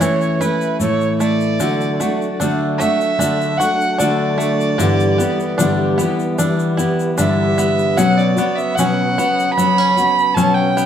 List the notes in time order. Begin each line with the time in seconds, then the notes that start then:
0.00 E3 A3 C#4 E4 C#5, shaker
0.21 shaker
0.39 A3 C#4 E4 B4, shaker
0.61 shaker
0.80 A2 E3 A3 E4 C#5, shaker
1.01 shaker
1.20 A3 D5, shaker
1.40 shaker
1.60 D3 F#3 A3 D4 F#4 A4, shaker
1.81 shaker
2.00 A3 D4 F#4, shaker
2.21 shaker
2.40 D3 A3 D4 F#4, shaker
2.78 A3 D4 F#4 E5, shaker
2.83 A3
3.01 shaker
3.18 D3 A3 D4 F#4, shaker
3.41 shaker
3.57 D4 F#4 F#5, shaker
3.63 A3
3.81 shaker
3.98 D3 A3 D4 F#4 D5, shaker
4.38 A3, shaker
4.61 shaker
4.78 G2 D3 E3 G3 B3 E4 G4 B4, shaker
5.00 shaker
5.18 E3 G3 B3 G4, shaker
5.40 shaker
5.58 G2 D3 E3 G3 B3 D4 G4, shaker
5.98 B3 G4, shaker
6.02 E3 G3
6.19 shaker
6.38 E3 G3 B3 D4 G4, shaker
6.59 shaker
6.77 G3 B3 E4 G4, shaker
6.81 E3
7.00 shaker
7.18 G2 D3 E3 G3 B3 D4 G4 E5, shaker
7.58 B3, shaker
7.79 shaker
7.97 B2 C#3 F#3 B3 C#4 F#4 F#5, shaker
8.18 D5, shaker
8.36 B3 C#4 F#4, shaker
8.56 E5, shaker
8.75 B2 F#3 B3 C#4 F#5, shaker
8.80 F#4
9.17 B3 C#4 F#4, shaker
9.39 shaker
9.53 B5
9.57 F#3 B3 C#4 F#4, shaker
9.78 C#4, shaker
9.96 B3 C#4 F#4, shaker
10.18 shaker
10.34 B2 F#3 B3 C#4 A5, shaker
10.54 G5
10.77 B3, shaker